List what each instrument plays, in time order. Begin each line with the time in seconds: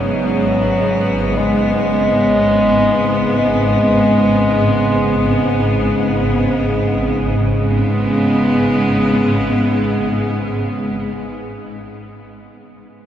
Already playing: synth drone G#1 G#2 B3, cello section C#3 G#3 B3, bass clarinet F#3
1.38 bass clarinet G#3
3.38 bass clarinet G#3
7.39 synth drone G#1 G#2, cello section C#3
7.54 cello section G#3
7.68 cello section B3